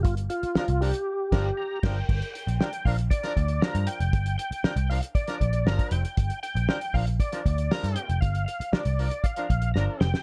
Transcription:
<<
  \new Staff \with { instrumentName = "Tonewheel organ" } { \time 4/4 \key g \minor \tempo 4 = 117 f'8 f'4 g'4. bes''8 g''8~ | g''8 g''4 f''8 d''4 bes''8 g''8~ | g''8 g''4 f''8 d''4 bes''8 g''8~ | g''8 g''4 f''8 d''4 bes''8 g''8 |
f''8 f''8 d''4 f''4 bes''8 g''8 | }
  \new Staff \with { instrumentName = "Horn section" } { \time 4/4 \key g \minor r4 <f d' bes'>16 r16 <f d' bes'>16 r8. <f d' bes'>8 r8 <f d' bes'>8 | r4 <f d' bes'>16 r16 <f d' bes'>16 r8 <f d' bes'>16 r8 <f d' bes'>8. r16 | r4 <f d' bes'>16 r16 <f d' bes'>16 r8 <f d' bes'>16 r8 <f d' bes'>8. r16 | r4 <f d' bes'>16 r16 <f d' bes'>16 r8 <f d' bes'>16 r8 <f d' bes'>8. r16 |
r4 <f d' bes'>16 r16 <f d' bes'>16 r8 <f d' bes'>16 r8 <f d' bes'>8. r16 | }
  \new Staff \with { instrumentName = "Picked electric bass" } { \clef bass \time 4/4 \key g \minor g,,8 r8. c,8 r8. g,,8 r8 g,,8 | g,,16 r8 bes,,16 r8 bes,,8 r8 d,8 r16 g,16 r16 f,,16 | g,,8 r8. c,8 r8. bes,,8 g,,16 r16 f,,16 r16 | g,,16 r8 bes,,16 r8 bes,,8 r8 d,8 r16 g,16 r16 f,,16 |
g,,8 r8. c,8 r8. bes,,8 g,,16 r16 f,,16 r16 | }
  \new DrumStaff \with { instrumentName = "Drums" } \drummode { \time 4/4 <hh bd>16 hh16 hh16 hh16 sn16 hh16 hho16 hh16 r8 <cymc bd sn>8 r8 <cymc bd sn>8 | <cymc bd>16 hh16 hh16 hh16 sn16 hh16 <hho bd>16 hh16 <hh bd>16 <hh sn>16 <hh bd>16 hh16 sn16 hh16 hh16 hh16 | <hh bd>16 hh16 hh16 hh16 sn16 hh16 hho16 hh16 <hh bd>16 <hh sn>16 <hh bd>16 hh16 sn16 <hh bd>16 hh16 hh16 | <hh bd>16 hh16 hh16 hh16 sn16 hh16 <hho bd>16 hh16 <hh bd>16 <hh sn>16 <hh bd>16 hh16 sn16 hh16 hh16 hh16 |
<hh bd>16 hh16 hh16 hh16 sn16 hh16 hho16 hh16 <hh bd>16 hh16 <hh bd>16 hh16 sn8 sn16 sn16 | }
>>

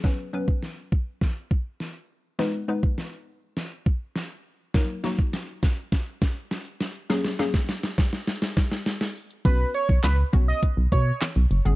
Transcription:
<<
  \new Staff \with { instrumentName = "Analog synth lead" } { \time 4/4 \key b \major \tempo 4 = 102 r1 | r1 | r1 | r1 |
b'8 cis''8 b'16 r8 dis''16 r8 cis''8 r4 | }
  \new Staff \with { instrumentName = "Synth pluck" } { \time 4/4 \key b \major <fis b cis' b'>16 r16 <fis b cis' b'>4. r2 | <gis b dis' b'>16 r16 <gis b dis' b'>4. r2 | <fis ais dis' ais'>16 r16 <fis ais dis' fis'>4. r2 | <fis ais cis' gis'>16 r16 <fis ais cis' gis'>4. r2 |
<b cis' fis'>4 r8 <b cis' fis'>4. r8. <b cis' gis'>16 | }
  \new Staff \with { instrumentName = "FM bass" } { \clef bass \time 4/4 \key b \major r1 | r1 | r1 | r1 |
b,,8 r16 b,,16 cis,8 b,,8 r16 b,,16 b,8 r16 b,,16 fis,,16 g,,16 | }
  \new DrumStaff \with { instrumentName = "Drums" } \drummode { \time 4/4 <bd sn>8. bd16 sn8 bd8 <bd sn>8 bd8 sn4 | sn8. bd16 sn4 sn8 bd8 sn4 | <hh bd sn>8 <hh sn>16 bd16 <hh sn>8 <hh bd sn>8 <hh bd sn>8 <hh bd sn>8 <hh sn>8 <hh sn>16 hh16 | <hh sn>16 sn16 <hh sn>16 <bd sn>16 <hh sn>16 sn16 <hh bd sn>16 sn16 <hh sn>16 sn16 <hh bd sn>16 sn16 <hh sn>16 sn16 hho16 hh16 |
<cymc hh bd>8 hh16 bd16 <hc hh sn>8 <hh bd>8 <hh bd>8 <hh bd>8 <hc hh sn>8 hh16 hh16 | }
>>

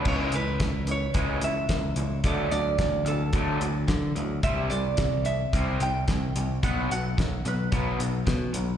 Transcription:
<<
  \new Staff \with { instrumentName = "Resonator guitar played with a steel bar" } { \time 4/4 \key cis \phrygian \tempo 4 = 110 cis''8 b'4 cis''4 e''4. | d''8 d''4 a'2 r8 | e''8 d''4 e''4 g''4. | fis''8 fis''4 b'2 r8 | }
  \new Staff \with { instrumentName = "Overdriven electric guitar" } { \clef bass \time 4/4 \key cis \phrygian <cis e gis>8 <cis e>8 <cis e>8 <cis e>8 <cis e gis>8 <cis e>8 <cis e>8 <cis e>8 | <d fis a>8 <d fis>8 <d fis>8 <d fis>8 <d fis a>8 <d fis>8 <d fis>8 <d fis>8 | <c g c'>8 <c g>8 <c g>8 <c g>8 <c g c'>8 <c g>8 <c g>8 <c g>8 | <b, fis b>8 <b, fis>8 <b, fis>8 <b, fis>8 <b, fis b>8 <b, fis>8 <b, fis>8 <b, fis>8 | }
  \new Staff \with { instrumentName = "Picked electric bass" } { \clef bass \time 4/4 \key cis \phrygian cis,8 cis,8 cis,4 cis,8 cis,8 cis,8 cis,8 | d,8 d,8 d,8 d,8 d,8 d,8 d8 d,8 | c,8 c,8 c,4 c,8 c,8 c,8 c,8 | b,,8 b,,8 b,,8 b,,8 b,,8 b,,8 b,8 b,,8 | }
  \new DrumStaff \with { instrumentName = "Drums" } \drummode { \time 4/4 <cymc bd>8 hh8 <hh bd sn>8 hh8 <hh bd>8 hh8 <hh bd sn>8 hh8 | <hh bd>8 hh8 <hh bd sn>8 hh8 <hh bd>8 hh8 <hh bd sn>8 hh8 | <hh bd>8 hh8 <hh bd sn>8 hh8 <hh bd>8 hh8 <hh bd sn>8 hh8 | <hh bd>8 hh8 <hh bd sn>8 hh8 <hh bd>8 hh8 <hh bd sn>8 hh8 | }
>>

